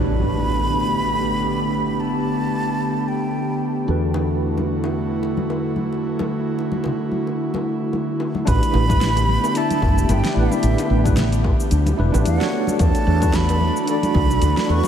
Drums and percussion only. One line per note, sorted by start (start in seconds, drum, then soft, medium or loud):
4.14 high bongo medium
4.58 high bongo soft
4.58 high conga medium
4.84 high bongo medium
5.23 high bongo soft
5.37 high conga medium
5.50 high bongo medium
5.76 high conga medium
5.93 high bongo soft
6.19 high bongo medium
6.19 high conga medium
6.59 high bongo soft
6.72 high conga medium
6.84 high bongo medium
6.84 low conga medium
7.12 high conga medium
7.27 high bongo soft
7.54 high bongo medium
7.54 high conga medium
7.93 high bongo soft
7.93 high conga medium
8.20 high bongo medium
8.35 high conga medium
8.47 kick loud
8.47 closed hi-hat medium
8.47 high bongo medium
8.47 shaker medium
8.63 closed hi-hat medium
8.63 shaker soft
8.74 high bongo medium
8.89 kick loud
8.89 closed hi-hat soft
8.89 high conga medium
8.89 shaker medium
9.01 snare medium
9.01 closed hi-hat medium
9.01 shaker medium
9.16 closed hi-hat soft
9.16 high bongo medium
9.16 shaker soft
9.28 high conga medium
9.44 high bongo medium
9.44 shaker medium
9.55 closed hi-hat medium
9.55 shaker medium
9.70 closed hi-hat soft
9.70 high conga medium
9.70 shaker soft
9.82 kick loud
9.82 high bongo medium
9.98 shaker medium
10.09 closed hi-hat medium
10.09 high bongo medium
10.09 high conga medium
10.09 shaker medium
10.25 snare medium
10.25 closed hi-hat soft
10.25 shaker soft
10.51 high bongo medium
10.51 high conga medium
10.51 shaker medium
10.63 closed hi-hat medium
10.63 shaker medium
10.78 closed hi-hat soft
10.78 high bongo medium
10.78 shaker soft
11.05 kick loud
11.05 closed hi-hat soft
11.05 high conga loud
11.05 shaker medium
11.16 snare medium
11.16 closed hi-hat medium
11.16 high bongo medium
11.16 low conga medium
11.16 shaker medium
11.32 closed hi-hat soft
11.32 shaker soft
11.44 kick loud
11.44 high bongo medium
11.60 shaker medium
11.71 closed hi-hat medium
11.71 shaker medium
11.86 closed hi-hat soft
11.86 high bongo medium
11.86 high conga loud
11.86 shaker soft
12.14 high bongo medium
12.14 shaker medium
12.25 closed hi-hat medium
12.25 high conga medium
12.25 shaker medium
12.41 snare medium
12.41 closed hi-hat soft
12.41 shaker soft
12.52 high bongo medium
12.67 high conga loud
12.67 shaker medium
12.79 kick loud
12.79 closed hi-hat medium
12.79 high bongo medium
12.79 shaker medium
12.95 closed hi-hat soft
12.95 shaker soft
13.22 kick loud
13.22 closed hi-hat soft
13.22 high bongo medium
13.22 high conga medium
13.22 shaker medium
13.33 snare medium
13.33 closed hi-hat medium
13.33 shaker medium
13.49 closed hi-hat soft
13.49 high bongo medium
13.49 shaker soft
13.61 high conga medium
13.77 shaker medium
13.87 closed hi-hat medium
13.87 high bongo soft
13.87 shaker medium
14.03 closed hi-hat soft
14.03 high conga medium
14.03 shaker soft
14.14 kick loud
14.14 high bongo medium
14.31 shaker medium
14.41 closed hi-hat medium
14.41 high conga medium
14.41 shaker medium
14.57 snare medium
14.57 closed hi-hat soft
14.57 high bongo medium
14.57 shaker soft
14.83 high bongo medium
14.83 high conga loud